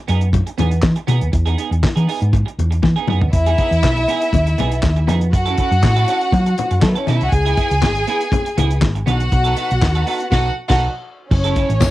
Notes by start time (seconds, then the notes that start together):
0.08 F#2 B3 D#4 G#4, closed hi-hat
0.21 muted clean electric guitar stroke, closed hi-hat
0.33 kick, closed hi-hat, muted conga, low conga
0.47 muted clean electric guitar stroke, closed hi-hat
0.58 E2 B3 D#4 G#4, closed hi-hat, muted conga, low conga
0.71 muted clean electric guitar stroke, closed hi-hat
0.82 E3, kick, snare, clap, high conga
0.96 muted clean electric guitar stroke, closed hi-hat
1.07 B2 B3 D#4 G#4, closed hi-hat, high conga
1.21 D#2, muted clean electric guitar stroke, closed hi-hat
1.32 E2, muted clean electric guitar stroke, kick, closed hi-hat, muted conga
1.46 B3 D#4 G#4, closed hi-hat
1.58 B3 D#4 G#4, closed hi-hat
1.71 E2, muted clean electric guitar stroke, closed hi-hat
1.83 muted clean electric guitar stroke, kick, snare, clap, high conga
1.96 E3 B3 D#4 G#4, closed hi-hat
2.07 B3 D#4 G#4, open hi-hat
2.21 G#2, muted clean electric guitar stroke, closed hi-hat
2.33 muted clean electric guitar stroke, kick, closed hi-hat, muted conga
2.46 muted clean electric guitar stroke, closed hi-hat
2.59 E2, closed hi-hat, muted conga
2.71 muted clean electric guitar stroke, closed hi-hat
2.82 E3, muted clean electric guitar stroke, kick, snare, high conga
2.96 B3 D#4 G#4
3.07 F#2 B3 D#4 G#4, mid tom, high conga
3.21 D#2, muted clean electric guitar stroke, floor tom
3.32 E2 E4 E5, muted clean electric guitar stroke, kick, closed hi-hat, muted conga
3.46 B3 D#4 G#4, closed hi-hat
3.58 B3 D#4 G#4, kick, closed hi-hat
3.71 E2, muted clean electric guitar stroke, closed hi-hat
3.83 B1, muted clean electric guitar stroke, kick, snare, clap, high conga
3.97 muted clean electric guitar stroke, closed hi-hat
4.08 B3 D#4 G#4, closed hi-hat
4.21 muted clean electric guitar stroke, closed hi-hat
4.33 D#2, kick, closed hi-hat, muted conga, low conga
4.47 muted clean electric guitar stroke, closed hi-hat
4.58 B1 B3 D#4 G#4, closed hi-hat, muted conga, low conga
4.72 muted clean electric guitar stroke, closed hi-hat
4.83 D#2, kick, snare, clap, high conga
4.96 muted clean electric guitar stroke, closed hi-hat
5.07 F2 B3 D#4 G#4, snare, closed hi-hat, high conga
5.21 muted clean electric guitar stroke, closed hi-hat
5.32 F#2 F#4 F#5, muted clean electric guitar stroke, kick, closed hi-hat
5.46 C#4 E4 A4, closed hi-hat
5.58 C#4 E4 A4, kick, closed hi-hat
5.71 F#2, muted clean electric guitar stroke, closed hi-hat
5.83 A2, muted clean electric guitar stroke, kick, snare, clap, high conga
5.96 C#4 E4 A4, closed hi-hat
6.08 C#4 E4 A4, closed hi-hat
6.21 muted clean electric guitar stroke, closed hi-hat
6.32 F#3, muted clean electric guitar stroke, kick, closed hi-hat, muted conga
6.46 muted clean electric guitar stroke, closed hi-hat
6.58 closed hi-hat, muted conga, low conga
6.71 F#2, muted clean electric guitar stroke, closed hi-hat
6.81 F#3 A3 A4, muted clean electric guitar stroke, kick, snare, clap, high conga
6.88 B3 B4
6.95 C#4 E4 A4 C#5, closed hi-hat
7.06 B2 C#4 D#4 E4 A4 D#5, snare, closed hi-hat, high conga
7.15 E4 E5
7.21 C2 F#4 F#5, muted clean electric guitar stroke, closed hi-hat
7.31 C#2 G#4 G#5, muted clean electric guitar stroke, kick, closed hi-hat, muted conga
7.46 B3 E4 G#4, closed hi-hat
7.57 B3 E4 G#4, kick, closed hi-hat
7.70 C#2, muted clean electric guitar stroke, closed hi-hat
7.82 G#1, muted clean electric guitar stroke, kick, snare, clap, high conga
7.95 muted clean electric guitar stroke, closed hi-hat
8.07 B3 E4 G#4, closed hi-hat
8.21 muted clean electric guitar stroke, closed hi-hat
8.32 kick, closed hi-hat, muted conga, low conga
8.45 muted clean electric guitar stroke, closed hi-hat
8.57 C#2 B3 E4 G#4, closed hi-hat, muted conga, low conga
8.70 muted clean electric guitar stroke, closed hi-hat
8.81 G#1, kick, snare, clap, high conga
8.95 muted clean electric guitar stroke, closed hi-hat
9.06 B1 B3 D#4 F#4 A4 F#5, closed hi-hat, high conga
9.20 muted clean electric guitar stroke, closed hi-hat
9.31 B1, muted clean electric guitar stroke, kick, closed hi-hat
9.44 B3 D#4 A4, closed hi-hat
9.56 B3 D#4 A4, closed hi-hat
9.70 B1, muted clean electric guitar stroke, closed hi-hat
9.82 D#2, muted clean electric guitar stroke, kick, snare, clap, high conga
9.95 B3 D#4 A4, closed hi-hat
10.06 B3 D#4 A4, open hi-hat
10.20 muted clean electric guitar stroke, closed hi-hat
10.31 B1 B3 D#4 F#4 A4 F#5, kick, snare, crash
10.68 B1 B3 D#4 F#4 A4 F#5, kick, snare, crash
11.30 F#1 C#4 C#5, muted clean electric guitar stroke, kick, crash
11.44 C#4 E4 A4, closed hi-hat
11.56 C#4 E4 A4, kick, closed hi-hat
11.69 A1, muted clean electric guitar stroke, closed hi-hat
11.80 F#1, muted clean electric guitar stroke, kick, snare, clap, tambourine, high conga